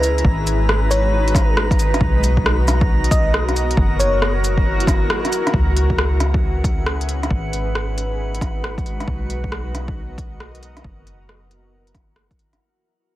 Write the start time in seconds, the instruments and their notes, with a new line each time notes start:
Already playing: 808-style bass C#2, ambient pad C#4 E4 G#4 B4, fm electric piano B4, synth texture A#5
0.03 closed hi-hat, cabasa
0.18 closed hi-hat
0.24 808-style bass G#1, ambient pad G#3 D#4 F#4, kick
0.47 closed hi-hat, cabasa
0.69 cross-stick
0.91 fm electric piano C#5, closed hi-hat, cabasa
1.28 closed hi-hat
1.35 kick, cross-stick, closed hi-hat, cabasa
1.57 cross-stick
1.71 kick, cross-stick, closed hi-hat
1.79 closed hi-hat, cabasa
1.94 cross-stick, closed hi-hat
2.00 808-style bass B1, ambient pad B3 F#4 A#4 D#5, kick
2.24 closed hi-hat, cabasa
2.37 kick
2.46 cross-stick
2.68 cross-stick, closed hi-hat, cabasa
2.81 kick
3.04 closed hi-hat
3.11 fm electric piano D#5, kick, closed hi-hat, cabasa
3.34 cross-stick
3.48 cross-stick, closed hi-hat
3.56 closed hi-hat, cabasa
3.71 closed hi-hat
3.77 808-style bass F#1, ambient pad E4, kick
3.99 fm electric piano C#5, closed hi-hat, cabasa
4.22 cross-stick
4.44 closed hi-hat, cabasa
4.58 kick
4.80 closed hi-hat
4.87 kick, cross-stick, closed hi-hat, cabasa
5.10 cross-stick
5.25 cross-stick, closed hi-hat
5.33 closed hi-hat, cabasa
5.47 cross-stick, closed hi-hat
5.54 808-style bass C#2, ambient pad C#4 G#4 B4 E5, synth texture F#5, kick
5.77 closed hi-hat
5.90 kick
5.99 cross-stick
6.20 cross-stick, closed hi-hat
6.34 kick
6.64 kick, closed hi-hat
6.87 cross-stick
7.01 closed hi-hat
7.09 closed hi-hat
7.23 cross-stick, closed hi-hat
7.30 808-style bass G#1, ambient pad G#3 D#4 F#4, kick
7.53 closed hi-hat
7.75 cross-stick
7.98 closed hi-hat
8.35 closed hi-hat
8.41 kick, cross-stick, closed hi-hat
8.64 cross-stick
8.78 kick, closed hi-hat
8.86 closed hi-hat
9.00 cross-stick, closed hi-hat
9.07 808-style bass B1, ambient pad B3 A#4 D#5, kick
9.30 closed hi-hat
9.44 kick
9.52 cross-stick
9.75 cross-stick, closed hi-hat
9.88 kick
10.18 kick, closed hi-hat
10.40 cross-stick
10.55 closed hi-hat
10.63 closed hi-hat
10.77 cross-stick, closed hi-hat
10.84 808-style bass F#1, ambient pad E4, kick
11.07 closed hi-hat
11.29 cross-stick
11.51 closed hi-hat
11.87 closed hi-hat
11.95 kick, cross-stick, closed hi-hat
12.16 cross-stick
12.31 kick, closed hi-hat
12.39 closed hi-hat
12.53 cross-stick, closed hi-hat